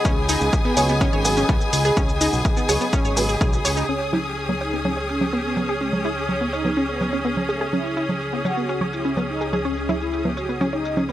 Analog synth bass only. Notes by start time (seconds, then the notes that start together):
0.05 C#2
0.41 C#2
0.77 C#2
1.13 G#1
1.49 C#2
1.73 C#2
1.97 C#2
2.33 B1
2.69 C#2
3.05 G#1
3.41 B1
3.65 C#2
3.89 C#2